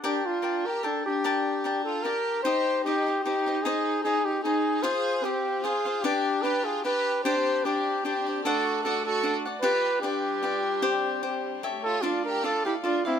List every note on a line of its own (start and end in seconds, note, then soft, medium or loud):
0.03 0.25 D4 medium
0.03 0.27 G4 medium
0.03 0.41 A#4 medium
0.03 0.42 D5 medium
0.03 0.43 G5 medium
0.03 0.43 A5 medium
0.26 0.66 D4 medium
0.26 0.68 F4 medium
0.42 0.82 A#4 soft
0.42 0.82 D5 medium
0.42 0.84 G5 soft
0.42 0.83 A5 medium
0.66 0.84 G4 medium
0.66 0.85 A#4 medium
0.83 1.06 D4 medium
0.83 1.05 A4 medium
0.83 1.23 A#4 soft
0.83 1.23 D5 soft
0.83 1.25 G5 soft
0.83 1.24 A5 medium
1.06 2.01 D4 medium
1.06 1.82 G4 medium
1.24 1.63 A#4 medium
1.24 1.64 D5 medium
1.24 1.65 G5 medium
1.24 1.65 A5 medium
1.64 2.03 A#4 medium
1.64 2.04 D5 medium
1.64 2.04 G5 medium
1.64 2.05 A5 medium
1.85 2.03 F4 medium
1.85 2.05 A4 medium
2.03 2.43 G4 medium
2.03 2.43 A#4 medium
2.03 2.44 A#4 medium
2.03 2.45 D5 medium
2.03 2.45 G5 medium
2.03 2.46 A5 soft
2.43 2.85 D#4 medium
2.43 2.82 G4 medium
2.43 2.85 G4 medium
2.43 2.81 C5 medium
2.43 2.86 C5 medium
2.43 2.87 D#5 medium
2.84 3.22 D#4 medium
2.84 3.07 D#4 soft
2.84 3.22 G4 medium
2.84 3.07 G4 medium
2.84 3.07 C5 soft
2.84 3.06 D#5 medium
3.07 3.24 G4 soft
3.07 3.25 C5 soft
3.07 3.25 D#5 soft
3.24 3.62 D#4 medium
3.24 3.47 D#4 medium
3.24 3.64 G4 medium
3.24 3.47 G4 medium
3.24 3.46 C5 medium
3.24 3.45 D#5 medium
3.46 3.65 G4 soft
3.46 3.65 C5 soft
3.46 3.65 D#5 soft
3.63 4.03 D#4 medium
3.63 4.04 D#4 medium
3.63 4.03 G#4 medium
3.63 4.05 G#4 medium
3.63 4.05 C5 medium
3.63 4.05 D#5 medium
4.03 4.24 D#4 medium
4.03 4.44 D#4 soft
4.03 4.27 G#4 medium
4.03 4.44 G#4 soft
4.03 4.45 C5 soft
4.03 4.45 D#5 medium
4.25 4.42 D#4 medium
4.25 4.43 G4 medium
4.43 4.81 D#4 medium
4.43 4.83 D#4 medium
4.43 4.84 G#4 medium
4.43 4.83 G#4 medium
4.43 4.83 C5 medium
4.43 4.84 D#5 medium
4.83 5.23 F4 medium
4.83 5.23 G#4 medium
4.83 5.24 G#4 medium
4.83 5.25 C5 medium
4.83 5.24 C5 medium
4.83 5.24 F5 loud
5.24 5.64 C4 medium
5.24 5.62 F4 medium
5.24 5.65 G4 medium
5.24 5.63 C5 medium
5.24 5.64 F5 medium
5.64 6.03 F4 medium
5.64 5.85 F4 medium
5.64 6.04 G#4 medium
5.64 5.85 G#4 medium
5.64 5.85 C5 medium
5.64 5.84 F5 medium
5.85 6.04 G#4 soft
5.85 6.04 C5 soft
5.85 6.03 F5 soft
6.02 6.43 D4 medium
6.02 6.44 D4 medium
6.02 6.44 G4 medium
6.02 6.44 B4 medium
6.02 6.45 D5 loud
6.43 6.84 D4 medium
6.43 6.65 G4 medium
6.43 6.84 G4 medium
6.43 6.67 B4 medium
6.43 6.85 B4 soft
6.43 6.86 D5 medium
6.64 6.83 F4 medium
6.64 6.84 G#4 medium
6.83 7.25 D4 medium
6.83 7.21 G4 medium
6.83 7.24 G4 soft
6.83 7.22 B4 medium
6.83 7.25 B4 medium
6.83 7.26 D5 medium
7.25 8.44 C4 medium
7.25 7.65 D4 medium
7.25 7.62 G4 medium
7.25 7.65 G4 medium
7.25 8.44 G4 medium
7.25 7.66 C5 medium
7.25 7.65 C5 medium
7.25 9.61 D5 medium
7.25 7.67 D5 loud
7.65 8.04 D4 soft
7.65 8.05 D4 medium
7.65 8.05 G4 medium
7.65 8.04 G4 medium
7.65 8.05 C5 medium
7.65 8.06 D5 medium
8.05 8.26 D4 medium
8.05 8.42 D4 medium
8.05 8.27 G4 medium
8.05 8.42 G4 medium
8.05 8.27 C5 medium
8.05 8.25 D5 medium
8.27 8.45 G4 soft
8.27 8.45 C5 soft
8.27 8.45 D5 soft
8.44 9.63 A3 medium
8.44 8.85 D4 medium
8.44 8.82 F#4 medium
8.44 9.62 F#4 medium
8.44 8.81 A4 medium
8.44 8.85 A4 medium
8.44 8.86 D5 medium
8.44 8.85 F#5 medium
8.84 9.22 D4 medium
8.84 9.04 F#4 medium
8.84 9.04 A4 medium
8.84 9.22 A4 medium
8.84 9.23 D5 medium
8.84 9.24 F#5 medium
9.06 9.36 F#4 medium
9.06 9.36 A4 medium
9.23 9.45 D4 medium
9.23 9.45 A4 medium
9.23 9.45 D5 medium
9.23 9.44 F#5 medium
9.45 9.63 A4 soft
9.45 9.62 D5 soft
9.45 9.63 F#5 soft
9.62 11.62 G3 medium
9.62 10.02 F4 medium
9.62 10.82 F4 medium
9.62 10.03 G4 medium
9.62 10.01 G4 medium
9.62 9.99 B4 medium
9.62 10.81 B4 medium
9.62 10.03 B4 loud
9.62 10.03 D5 loud
10.02 11.60 D4 medium
10.02 10.41 F4 medium
10.02 11.59 G4 medium
10.02 10.42 G4 medium
10.02 10.42 B4 medium
10.02 10.43 D5 medium
10.43 10.83 F4 soft
10.43 10.81 G4 medium
10.43 10.82 B4 medium
10.43 10.83 D5 medium
10.82 11.63 C4 medium
10.82 11.22 G4 loud
10.82 11.22 C5 loud
10.82 11.63 C5 medium
11.23 11.62 G4 medium
11.23 11.63 C5 medium
11.62 12.01 A3 medium
11.62 12.03 G4 medium
11.62 12.02 G4 medium
11.62 12.02 A4 medium
11.62 12.03 C#5 medium
11.62 12.04 E5 medium
11.84 12.03 F4 medium
11.84 12.03 A4 medium
12.02 13.19 A3 soft
12.02 12.43 D4 medium
12.02 12.26 D4 medium
12.02 12.24 F4 medium
12.02 13.19 F4 soft
12.02 12.43 A4 medium
12.02 13.19 D5 medium
12.02 12.44 D5 medium
12.02 12.45 F5 medium
12.25 12.43 G4 medium
12.25 12.46 A#4 medium
12.43 12.66 D4 soft
12.43 12.66 F4 medium
12.43 12.65 A4 medium
12.43 12.65 D5 medium
12.43 12.64 F5 medium
12.65 12.75 E4 medium
12.65 12.74 G4 medium
12.65 12.82 A4 soft
12.65 12.83 D5 soft
12.65 12.84 F5 soft
12.84 13.05 D4 medium
12.84 13.04 D4 medium
12.84 13.04 F4 medium
12.84 13.05 A4 medium
12.84 13.05 D5 medium
12.84 13.04 F5 soft
13.05 13.19 C4 medium
13.05 13.19 E4 medium
13.05 13.19 A4 soft
13.05 13.19 D5 soft
13.05 13.19 F5 soft